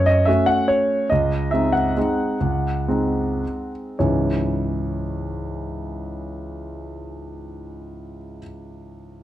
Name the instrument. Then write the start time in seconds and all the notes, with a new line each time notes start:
grand piano
Already playing: F#2 C#5
0.06 D#5
0.25 A3 C#4 F#4 E5
0.46 F#5
0.68 C#5
1.10 C#2 D#5
1.51 G#3 C4 D#4 E5
1.72 F#5
1.97 G#3 C4 D#4
2.40 C#2
2.88 G#3 C4 D#4
3.99 C#2 G#2 E3 G#3 C#4 E4 C#5